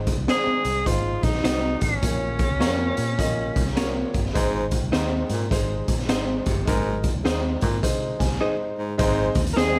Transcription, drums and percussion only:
0.07 kick medium
0.07 closed hi-hat medium
0.28 snare loud
0.28 closed hi-hat medium
0.65 closed hi-hat medium
0.86 kick medium
0.86 closed hi-hat medium
1.23 kick medium
1.23 snare soft
1.23 closed hi-hat medium
1.35 snare soft
1.45 snare loud
1.45 closed hi-hat loud
1.81 kick medium
1.81 closed hi-hat medium
2.03 kick loud
2.03 closed hi-hat medium
2.39 kick medium
2.39 closed hi-hat medium
2.61 snare loud
2.61 closed hi-hat medium
2.97 closed hi-hat medium
3.19 kick medium
3.19 closed hi-hat medium
3.56 kick medium
3.56 closed hi-hat medium
3.67 snare soft
3.77 snare loud
3.77 closed hi-hat medium
4.14 kick medium
4.14 closed hi-hat medium
4.26 snare soft
4.35 kick loud
4.35 closed hi-hat medium
4.71 kick medium
4.71 closed hi-hat medium
4.93 snare loud
4.93 closed hi-hat medium
5.29 closed hi-hat medium
5.51 kick medium
5.51 closed hi-hat medium
5.88 kick medium
5.88 closed hi-hat medium
5.99 snare soft
6.09 snare loud
6.09 closed hi-hat loud
6.46 kick medium
6.46 closed hi-hat medium
6.67 kick loud
6.67 closed hi-hat medium
7.04 kick medium
7.04 closed hi-hat medium
7.25 snare loud
7.25 closed hi-hat medium
7.61 kick medium
7.61 closed hi-hat medium
7.83 kick medium
7.83 closed hi-hat medium
8.20 kick medium
8.20 snare soft
8.20 closed hi-hat medium
8.31 snare soft
8.99 kick loud
8.99 closed hi-hat medium
9.35 kick loud
9.35 closed hi-hat medium
9.47 closed hi-hat medium
9.57 snare loud
9.57 closed hi-hat medium

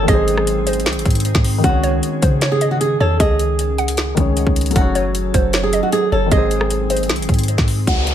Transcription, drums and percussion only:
0.08 kick loud
0.08 closed hi-hat medium
0.28 closed hi-hat medium
0.37 cross-stick medium
0.47 closed hi-hat medium
0.67 closed hi-hat medium
0.73 closed hi-hat medium
0.80 closed hi-hat medium
0.86 snare loud
0.86 closed hi-hat soft
0.93 closed hi-hat medium
0.99 closed hi-hat medium
1.05 kick medium
1.05 closed hi-hat soft
1.10 closed hi-hat medium
1.15 closed hi-hat medium
1.20 closed hi-hat medium
1.25 closed hi-hat medium
1.35 kick loud
1.35 snare loud
1.44 open hi-hat medium
1.64 kick loud
1.64 closed hi-hat medium
1.83 closed hi-hat medium
2.03 closed hi-hat medium
2.22 kick medium
2.22 closed hi-hat medium
2.41 snare loud
2.41 closed hi-hat medium
2.61 closed hi-hat medium
2.81 closed hi-hat medium
3.20 kick loud
3.20 closed hi-hat medium
3.39 closed hi-hat medium
3.59 closed hi-hat medium
3.78 closed hi-hat medium
3.88 closed hi-hat medium
3.97 snare loud
3.97 closed hi-hat medium
4.17 kick medium
4.17 closed hi-hat medium
4.37 closed hi-hat medium
4.47 kick loud
4.56 closed hi-hat medium
4.56 open hi-hat medium
4.61 closed hi-hat medium
4.66 closed hi-hat medium
4.71 closed hi-hat medium
4.76 kick loud
4.76 closed hi-hat medium
4.95 closed hi-hat medium
5.15 closed hi-hat medium
5.34 kick medium
5.34 closed hi-hat medium
5.53 snare loud
5.53 closed hi-hat medium
5.73 closed hi-hat medium
5.92 closed hi-hat medium
6.32 kick loud
6.32 closed hi-hat medium
6.51 closed hi-hat medium
6.61 cross-stick medium
6.70 closed hi-hat medium
6.90 closed hi-hat medium
6.96 closed hi-hat medium
7.03 closed hi-hat medium
7.09 snare loud
7.09 closed hi-hat soft
7.16 closed hi-hat medium
7.22 closed hi-hat medium
7.29 kick medium
7.29 closed hi-hat soft
7.34 closed hi-hat medium
7.39 closed hi-hat medium
7.43 closed hi-hat medium
7.48 closed hi-hat medium
7.58 kick loud
7.58 snare loud
7.68 open hi-hat medium
7.87 kick loud
7.87 closed hi-hat medium
8.07 closed hi-hat medium

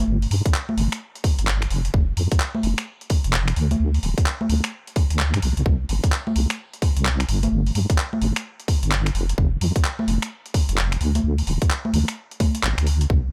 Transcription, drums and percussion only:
0.22 open hi-hat medium
0.31 open hi-hat loud
0.46 kick loud
0.46 closed hi-hat medium
0.54 clap loud
0.69 high conga medium
0.78 open hi-hat loud
0.92 finger snap medium
0.92 closed hi-hat medium
1.15 closed hi-hat soft
1.24 kick loud
1.24 open hi-hat loud
1.39 closed hi-hat medium
1.47 clap loud
1.62 finger snap medium
1.62 closed hi-hat soft
1.71 open hi-hat loud
1.85 closed hi-hat medium
1.94 kick loud
2.17 open hi-hat loud
2.32 kick loud
2.32 closed hi-hat medium
2.40 clap loud
2.55 high conga medium
2.63 open hi-hat loud
2.78 finger snap medium
2.78 closed hi-hat medium
3.01 closed hi-hat soft
3.10 kick loud
3.10 open hi-hat loud
3.24 closed hi-hat medium
3.33 clap loud
3.48 finger snap medium
3.48 closed hi-hat soft
3.56 open hi-hat loud
3.71 closed hi-hat medium
3.71 high conga medium
3.94 open hi-hat medium
4.03 open hi-hat loud
4.18 kick loud
4.18 closed hi-hat medium
4.26 clap loud
4.41 high conga medium
4.50 open hi-hat loud
4.64 finger snap medium
4.64 closed hi-hat medium
4.87 closed hi-hat soft
4.96 kick loud
4.96 open hi-hat medium
5.10 closed hi-hat medium
5.19 clap loud
5.34 finger snap medium
5.34 closed hi-hat medium
5.42 open hi-hat loud
5.57 closed hi-hat medium
5.66 kick loud
5.89 open hi-hat loud
6.04 kick loud
6.04 closed hi-hat medium
6.12 clap loud
6.27 high conga medium
6.36 open hi-hat loud
6.50 finger snap medium
6.50 closed hi-hat medium
6.74 closed hi-hat soft
6.82 kick loud
6.82 open hi-hat loud
6.97 closed hi-hat medium
7.05 clap loud
7.20 finger snap medium
7.20 closed hi-hat medium
7.29 open hi-hat loud
7.43 closed hi-hat medium
7.43 high conga medium
7.66 open hi-hat medium
7.75 open hi-hat loud
7.90 kick loud
7.90 closed hi-hat medium
7.98 clap loud
8.13 high conga medium
8.22 open hi-hat loud
8.36 finger snap medium
8.36 closed hi-hat medium
8.60 closed hi-hat soft
8.68 kick loud
8.68 open hi-hat loud
8.83 closed hi-hat medium
8.92 clap loud
9.06 finger snap medium
9.06 closed hi-hat medium
9.15 open hi-hat loud
9.29 closed hi-hat medium
9.38 kick loud
9.61 open hi-hat loud
9.76 kick loud
9.76 closed hi-hat medium
9.85 clap loud
9.99 high conga medium
10.08 open hi-hat loud
10.22 finger snap medium
10.22 closed hi-hat medium
10.46 closed hi-hat soft
10.54 kick loud
10.54 open hi-hat loud
10.69 closed hi-hat medium
10.78 clap loud
10.92 finger snap medium
10.92 closed hi-hat medium
11.01 open hi-hat loud
11.15 closed hi-hat medium
11.15 high conga medium
11.38 open hi-hat medium
11.47 open hi-hat loud
11.62 kick loud
11.62 closed hi-hat medium
11.71 clap loud
11.85 high conga medium
11.94 open hi-hat loud
12.08 finger snap medium
12.08 closed hi-hat medium
12.31 closed hi-hat soft
12.40 kick loud
12.40 open hi-hat loud
12.40 high conga medium
12.55 closed hi-hat medium
12.63 clap loud
12.78 finger snap medium
12.78 closed hi-hat medium
12.87 open hi-hat loud
13.01 closed hi-hat medium
13.10 kick loud

